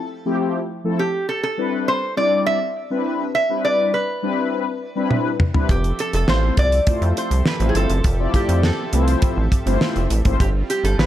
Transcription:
0.00 0.36 A4 medium
0.25 0.59 F3 medium
0.25 0.59 A3 medium
0.25 0.59 C4 medium
0.25 0.59 E4 medium
0.25 0.59 G4 loud
0.84 0.98 F3 medium
0.84 0.98 A3 medium
0.84 0.99 C4 medium
0.84 0.99 E4 medium
0.84 0.99 A4 medium
0.99 1.26 G4 medium
1.29 1.42 A4 medium
1.43 1.89 A4 medium
1.58 1.91 G3 medium
1.58 1.91 C4 medium
1.58 1.92 D4 medium
1.58 1.92 E4 medium
1.58 1.92 B4 medium
1.88 2.15 C5 loud
2.17 2.59 G3 medium
2.17 2.59 C4 medium
2.17 2.59 D4 medium
2.17 2.59 E4 medium
2.17 2.59 D5 medium
2.17 2.44 D5 loud
2.46 3.34 E5 loud
2.90 3.24 G3 medium
2.90 3.24 C4 medium
2.90 3.24 D4 medium
2.90 3.24 E4 medium
2.90 3.24 B4 medium
3.35 3.64 E5 loud
3.49 3.91 G3 medium
3.49 3.91 C4 medium
3.49 3.91 D4 medium
3.49 3.92 E4 medium
3.49 3.92 B4 medium
3.65 3.91 D5 medium
3.94 5.36 B4 medium
4.22 4.65 G3 medium
4.22 4.65 C4 medium
4.22 4.65 D4 medium
4.22 4.65 E4 medium
4.22 4.65 B4 loud
4.95 5.29 G3 medium
4.95 5.30 C4 medium
4.95 5.30 D4 medium
4.95 5.30 E4 medium
4.95 5.30 B4 loud
5.11 high tom medium
5.40 mid tom loud
5.54 5.68 G3 medium
5.54 5.69 C4 medium
5.54 5.69 D4 medium
5.54 5.69 E4 medium
5.54 5.69 B4 medium
5.54 floor tom loud
5.69 5.92 F1 loud
5.69 10.36 F3 medium
5.69 11.06 C4 medium
5.69 10.36 G4 medium
5.69 6.00 G4 medium
5.69 10.36 A4 medium
5.69 10.36 E5 medium
5.69 kick loud
5.69 closed hi-hat medium
5.84 closed hi-hat soft
5.99 6.13 A4 loud
5.99 closed hi-hat medium
6.13 6.25 F1 loud
6.13 6.29 A4 medium
6.13 closed hi-hat medium
6.28 6.51 A1 loud
6.28 6.62 A3 medium
6.28 6.62 C4 medium
6.28 6.62 E4 medium
6.28 6.62 F4 medium
6.28 6.62 C5 medium
6.28 6.56 C5 loud
6.28 snare loud
6.57 6.80 C2 loud
6.57 7.17 D5 loud
6.57 kick medium
6.57 closed hi-hat medium
6.72 closed hi-hat medium
6.87 6.93 F2 soft
6.87 7.29 A3 medium
6.87 7.29 C4 medium
6.87 7.29 E4 medium
6.87 7.29 F4 medium
6.87 7.29 C5 medium
6.87 kick loud
6.87 closed hi-hat loud
7.02 7.13 F2 loud
7.02 closed hi-hat soft
7.17 7.45 C5 loud
7.17 closed hi-hat medium
7.31 7.42 C2 loud
7.31 closed hi-hat medium
7.46 7.70 B4 loud
7.46 snare loud
7.60 7.72 A1 loud
7.60 7.94 A3 medium
7.60 7.94 C4 medium
7.60 7.94 E4 medium
7.60 7.94 F4 medium
7.60 7.94 C5 medium
7.60 closed hi-hat soft
7.69 7.76 G#4 medium
7.75 7.86 G1 loud
7.75 8.35 A4 loud
7.75 closed hi-hat medium
7.90 8.01 F#1 medium
7.90 closed hi-hat medium
8.04 8.27 F1 loud
8.04 kick loud
8.04 closed hi-hat medium
8.19 8.61 A3 medium
8.19 8.62 C4 medium
8.19 8.62 E4 medium
8.19 8.62 F4 medium
8.19 8.62 D5 medium
8.34 8.65 G4 medium
8.34 kick medium
8.34 closed hi-hat medium
8.49 8.72 F2 loud
8.49 closed hi-hat medium
8.63 9.78 A4 medium
8.63 snare loud
8.93 9.16 C2 medium
8.93 9.35 A3 medium
8.93 9.35 C4 medium
8.93 9.35 E4 medium
8.93 9.36 F4 medium
8.93 9.00 B4 medium
8.93 closed hi-hat medium
9.01 9.39 C5 medium
9.08 closed hi-hat medium
9.22 kick loud
9.22 closed hi-hat medium
9.37 9.49 A1 medium
9.52 kick loud
9.52 closed hi-hat medium
9.66 9.78 G1 medium
9.66 10.00 A3 medium
9.66 10.00 C4 medium
9.66 10.00 E4 medium
9.66 10.00 F4 medium
9.66 10.00 C5 loud
9.66 closed hi-hat medium
9.81 snare loud
9.96 10.07 F1 medium
9.96 closed hi-hat soft
10.10 10.22 A1 loud
10.10 closed hi-hat medium
10.25 10.37 G#1 loud
10.25 10.39 A3 medium
10.25 10.40 C4 medium
10.25 10.40 E4 medium
10.25 10.40 F4 medium
10.25 10.40 C5 medium
10.25 kick loud
10.25 closed hi-hat medium
10.40 10.63 G1 medium
10.40 11.06 G3 medium
10.40 11.06 F4 medium
10.40 10.49 G4 medium
10.40 kick loud
10.40 closed hi-hat medium
10.70 10.85 G4 medium
10.70 closed hi-hat medium
10.84 10.95 G1 medium
10.84 10.98 A4 medium
10.84 closed hi-hat medium
10.98 11.06 A1 loud
10.98 11.06 A3 medium
10.98 11.06 D4 medium
10.98 11.06 F4 medium
10.98 11.06 G4 medium
10.98 11.06 B4 loud
10.98 11.06 C5 medium
10.98 snare loud

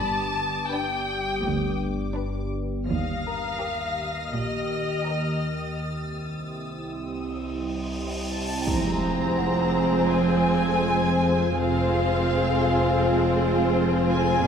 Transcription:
0.00 0.57 G1 medium
0.00 2.85 G1 medium
0.00 0.57 G2 medium
0.00 0.71 A5 medium
0.00 2.49 D6 soft
0.00 1.77 D#6 soft
0.71 1.25 D4 soft
0.71 1.26 B4 soft
0.71 1.80 G5 medium
1.44 2.01 D2 soft
2.16 2.70 D4 soft
2.16 2.70 B4 soft
2.89 3.46 D#2 soft
2.89 5.78 D#2 medium
2.89 4.30 F5 medium
2.89 8.27 D#6 soft
2.89 6.39 F6 soft
2.89 5.84 A#6 soft
3.27 5.39 A#4 soft
3.27 5.39 A#5 soft
3.61 4.15 G4 soft
3.61 4.15 A#4 soft
4.33 4.91 A#1 soft
4.33 4.91 A#2 soft
4.33 5.78 D#5 medium
5.07 5.60 G4 soft
5.07 5.60 A#4 soft
5.78 8.67 C2 soft
5.78 cymbal swell soft
5.84 6.83 A6 soft
6.39 7.55 E6 soft
8.30 8.64 A5 soft
8.66 11.52 F1 soft
8.66 11.52 F2 medium
8.66 11.52 F2 soft
8.66 11.52 F3 soft
8.66 11.53 F3 soft
8.66 11.52 G#3 soft
8.66 11.52 C4 soft
8.66 11.53 C4 soft
8.66 11.53 G#4 soft
8.66 11.53 C5 soft
8.66 10.12 A#5 soft
8.66 impact soft
9.38 11.52 F#5 soft
10.12 11.56 G#5 medium
11.56 14.42 F1 soft
11.56 14.42 F2 soft
11.56 14.43 F2 medium
11.56 14.42 F3 soft
11.56 14.42 G#3 soft
11.56 14.41 C4 soft
11.56 14.42 C4 soft
11.56 14.41 F4 soft
11.56 14.42 F4 soft
11.56 14.41 G#4 soft
11.56 14.42 C5 soft
11.56 13.73 F5 medium
12.64 14.47 F5 soft
14.09 14.43 G#5 medium

